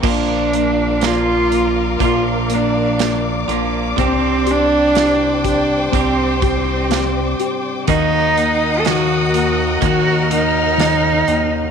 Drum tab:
CC |x-------|--------|--------|
HH |-xxxxxxx|xxxxxxxx|xxxxxxxx|
SD |--o---o-|--o---o-|--o---o-|
BD |o---o---|o--ooo--|o---o---|